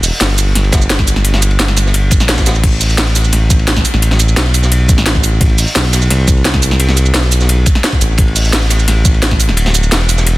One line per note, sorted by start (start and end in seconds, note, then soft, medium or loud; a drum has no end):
0.00 0.11 E1 medium
0.00 closed hi-hat medium
0.00 open hi-hat medium
0.00 shaker medium
0.20 0.54 G1 medium
0.20 snare loud
0.20 closed hi-hat medium
0.20 ride medium
0.30 snare soft
0.38 closed hi-hat medium
0.38 ride medium
0.38 shaker medium
0.55 1.58 G1 loud
0.55 snare soft
0.55 closed hi-hat loud
0.55 ride medium
0.64 ride soft
0.72 kick loud
0.72 snare loud
0.72 closed hi-hat medium
0.72 ride medium
0.72 shaker medium
0.82 shaker soft
0.90 snare loud
0.90 closed hi-hat medium
0.90 ride medium
0.99 kick medium
0.99 snare medium
1.07 closed hi-hat medium
1.07 ride medium
1.07 shaker medium
1.16 snare soft
1.24 closed hi-hat medium
1.24 ride medium
1.34 snare soft
1.42 closed hi-hat medium
1.42 ride medium
1.42 shaker medium
1.51 ride soft
1.59 2.22 G1 medium
1.59 snare loud
1.59 closed hi-hat medium
1.59 ride medium
1.68 snare medium
1.77 snare soft
1.77 open hi-hat medium
1.77 ride medium
1.77 shaker medium
1.86 snare soft
1.94 closed hi-hat loud
1.94 ride medium
2.11 kick loud
2.11 closed hi-hat medium
2.11 ride medium
2.11 shaker medium
2.20 2.28 B1 loud
2.20 snare soft
2.20 shaker soft
2.29 2.62 A1 loud
2.29 snare medium
2.29 snare loud
2.29 closed hi-hat medium
2.29 ride medium
2.34 snare medium
2.34 ride medium
2.38 kick medium
2.38 snare medium
2.38 ride medium
2.38 shaker soft
2.46 snare loud
2.46 closed hi-hat medium
2.46 ride medium
2.46 shaker medium
2.55 shaker soft
2.64 3.32 A1 loud
2.64 kick loud
2.64 closed hi-hat medium
2.64 crash loud
2.64 ride medium
2.73 ride soft
2.81 closed hi-hat medium
2.81 open hi-hat medium
2.81 shaker medium
2.90 shaker soft
2.98 snare loud
2.98 closed hi-hat medium
2.98 ride loud
3.08 snare soft
3.15 snare soft
3.15 open hi-hat medium
3.15 ride medium
3.15 shaker medium
3.24 shaker soft
3.32 3.84 A1 medium
3.32 snare soft
3.32 closed hi-hat loud
3.32 ride medium
3.50 kick loud
3.50 closed hi-hat medium
3.50 ride medium
3.50 shaker medium
3.59 ride soft
3.68 snare loud
3.68 closed hi-hat loud
3.68 ride medium
3.76 kick medium
3.76 snare medium
3.85 open hi-hat medium
3.85 ride medium
3.85 shaker medium
3.94 4.36 A1 medium
3.94 snare soft
4.02 closed hi-hat medium
4.02 ride medium
4.11 snare soft
4.20 closed hi-hat medium
4.20 ride medium
4.20 shaker medium
4.29 ride soft
4.29 shaker soft
4.36 4.90 B1 medium
4.36 snare loud
4.36 closed hi-hat medium
4.36 ride loud
4.54 open hi-hat medium
4.54 ride medium
4.54 shaker medium
4.63 snare soft
4.63 shaker soft
4.72 closed hi-hat loud
4.72 ride medium
4.89 5.22 A1 loud
4.89 kick loud
4.89 closed hi-hat medium
4.89 ride medium
4.89 shaker medium
4.98 snare medium
5.06 snare loud
5.06 closed hi-hat medium
5.06 ride loud
5.15 kick medium
5.15 ride soft
5.24 5.66 A1 medium
5.24 open hi-hat medium
5.24 ride medium
5.24 shaker medium
5.41 kick loud
5.41 closed hi-hat medium
5.41 ride loud
5.49 ride soft
5.58 closed hi-hat medium
5.58 open hi-hat medium
5.58 shaker medium
5.67 shaker soft
5.75 6.09 B1 medium
5.75 snare loud
5.75 closed hi-hat medium
5.75 ride medium
5.85 snare soft
5.93 snare medium
5.93 open hi-hat medium
5.93 ride medium
5.93 shaker medium
6.02 shaker soft
6.10 7.13 C2 medium
6.10 snare soft
6.10 closed hi-hat medium
6.10 ride medium
6.27 kick loud
6.27 closed hi-hat medium
6.27 ride medium
6.27 shaker medium
6.37 ride soft
6.45 snare loud
6.45 closed hi-hat medium
6.45 ride medium
6.54 kick medium
6.54 snare medium
6.62 open hi-hat medium
6.62 ride medium
6.62 shaker medium
6.71 snare soft
6.80 closed hi-hat medium
6.80 ride medium
6.89 snare soft
6.97 closed hi-hat medium
6.97 ride medium
6.97 shaker medium
7.06 ride soft
7.06 shaker soft
7.14 7.65 B1 medium
7.14 snare loud
7.14 closed hi-hat medium
7.14 ride medium
7.32 open hi-hat medium
7.32 ride medium
7.32 shaker medium
7.41 snare soft
7.41 shaker soft
7.49 closed hi-hat medium
7.49 ride medium
7.66 kick loud
7.66 closed hi-hat medium
7.66 ride medium
7.66 shaker medium
7.75 snare soft
7.84 snare loud
7.84 closed hi-hat medium
7.84 ride medium
7.92 kick medium
7.92 ride soft
8.01 8.17 A1 medium
8.01 open hi-hat medium
8.01 ride medium
8.01 shaker medium
8.18 8.86 A1 loud
8.18 kick loud
8.18 closed hi-hat medium
8.18 ride medium
8.28 ride soft
8.36 closed hi-hat medium
8.36 open hi-hat medium
8.36 shaker medium
8.45 shaker soft
8.53 snare loud
8.53 closed hi-hat medium
8.53 ride loud
8.62 snare soft
8.70 snare medium
8.70 open hi-hat medium
8.70 ride medium
8.70 shaker medium
8.79 shaker soft
8.88 9.50 A1 medium
8.88 snare soft
8.88 closed hi-hat medium
8.88 ride medium
9.05 kick loud
9.05 closed hi-hat medium
9.05 ride medium
9.05 shaker medium
9.14 ride soft
9.22 snare loud
9.22 closed hi-hat medium
9.22 ride medium
9.31 kick medium
9.31 snare medium
9.40 open hi-hat medium
9.40 ride medium
9.40 shaker medium
9.49 9.91 D1 medium
9.49 snare soft
9.57 closed hi-hat medium
9.57 ride loud
9.66 snare medium
9.66 snare soft
9.75 closed hi-hat medium
9.75 ride medium
9.75 shaker medium
9.83 ride soft
9.83 shaker soft
9.92 10.38 E1 medium
9.92 snare loud
9.92 closed hi-hat medium
9.92 ride loud
10.09 open hi-hat medium
10.09 ride medium
10.09 shaker medium
10.18 snare soft
10.18 shaker soft
10.27 closed hi-hat medium
10.27 ride medium